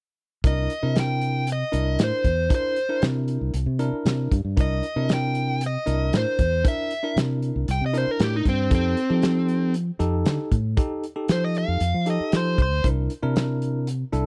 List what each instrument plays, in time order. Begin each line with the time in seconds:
0.44 fingered electric bass C2, tine electric piano D4 E4 A#4, overdriven electric guitar D#5, kick, closed hi-hat
0.70 closed hi-hat
0.83 fingered electric bass C3, tine electric piano D4 E4 A#4
0.96 snare, closed hi-hat
1.00 overdriven electric guitar G5
1.21 closed hi-hat
1.47 closed hi-hat
1.52 overdriven electric guitar D#5
1.72 fingered electric bass C2, tine electric piano D4 E4 A#4, closed hi-hat
1.99 fingered electric bass A2, snare, closed hi-hat
2.04 overdriven electric guitar C5
2.24 fingered electric bass E2, kick, closed hi-hat
2.49 tine electric piano D4 E4 A#4, kick, closed hi-hat
2.55 overdriven electric guitar C5
2.76 closed hi-hat
2.89 tine electric piano D4 E4 A#4
3.02 fingered electric bass C3, snare, closed hi-hat
3.28 closed hi-hat
3.41 fingered electric bass C2
3.54 fingered electric bass C2, closed hi-hat
3.66 fingered electric bass C3
3.79 tine electric piano D4 E4 A#4, closed hi-hat
3.92 muted fingered electric bass stroke
4.05 fingered electric bass C3, snare, closed hi-hat
4.32 fingered electric bass G2, kick, closed hi-hat
4.45 fingered electric bass G2
4.57 fingered electric bass C2, tine electric piano D4 E4 A#4, kick, closed hi-hat
4.61 overdriven electric guitar D#5
4.83 closed hi-hat
4.96 fingered electric bass C3, tine electric piano D4 E4 A#4
5.09 snare, closed hi-hat
5.14 overdriven electric guitar G5
5.35 closed hi-hat
5.61 closed hi-hat
5.66 overdriven electric guitar D#5
5.86 fingered electric bass C2, tine electric piano D4 E4 A#4, closed hi-hat
6.13 fingered electric bass A2, snare, closed hi-hat
6.17 overdriven electric guitar C5
6.39 fingered electric bass E2, kick, closed hi-hat
6.64 tine electric piano D4 E4 A#4, overdriven electric guitar E5, kick, closed hi-hat
6.91 closed hi-hat
7.03 tine electric piano D4 E4 A#4
7.16 fingered electric bass C3, snare, closed hi-hat
7.42 closed hi-hat
7.56 fingered electric bass C2
7.68 fingered electric bass C2, overdriven electric guitar G5, closed hi-hat
7.81 fingered electric bass C3
7.86 overdriven electric guitar D#5
7.93 tine electric piano D4 E4 A#4, closed hi-hat
7.98 overdriven electric guitar C5
8.07 muted fingered electric bass stroke
8.11 overdriven electric guitar A#4
8.20 fingered electric bass A2, snare, closed hi-hat
8.24 overdriven electric guitar G4
8.36 overdriven electric guitar D#4
8.45 fingered electric bass G2, overdriven electric guitar C4, kick, closed hi-hat
8.70 fingered electric bass F2, tine electric piano D#4 G4 A4, kick, closed hi-hat
8.75 overdriven electric guitar C4
8.97 closed hi-hat
9.10 fingered electric bass F3, tine electric piano D#4 G4 A4
9.22 snare, closed hi-hat
9.48 closed hi-hat
9.74 closed hi-hat
9.99 fingered electric bass F2, tine electric piano D#4 G4 A4, closed hi-hat
10.25 fingered electric bass D3, snare, closed hi-hat
10.51 fingered electric bass A2, kick, closed hi-hat
10.77 tine electric piano D#4 G4 A4, kick, closed hi-hat
11.04 closed hi-hat
11.16 tine electric piano D#4 G4 A4
11.28 fingered electric bass F3, overdriven electric guitar C5, snare, closed hi-hat
11.44 overdriven electric guitar D#5
11.55 overdriven electric guitar F5, closed hi-hat
11.68 fingered electric bass F2
11.80 fingered electric bass F2, closed hi-hat
11.94 fingered electric bass F3
12.06 tine electric piano D#4 G4 A4, closed hi-hat
12.10 overdriven electric guitar D#5
12.20 muted fingered electric bass stroke
12.32 fingered electric bass F3, snare, closed hi-hat
12.37 overdriven electric guitar C5
12.58 fingered electric bass C2, kick, closed hi-hat
12.62 overdriven electric guitar C5
12.71 fingered electric bass D2
12.84 fingered electric bass C2, tine electric piano D4 E4 A#4, kick, closed hi-hat
13.10 closed hi-hat
13.23 fingered electric bass C3, tine electric piano D4 E4 A#4
13.36 snare, closed hi-hat
13.62 closed hi-hat
13.87 closed hi-hat
14.12 fingered electric bass C2, tine electric piano D4 E4 A4, closed hi-hat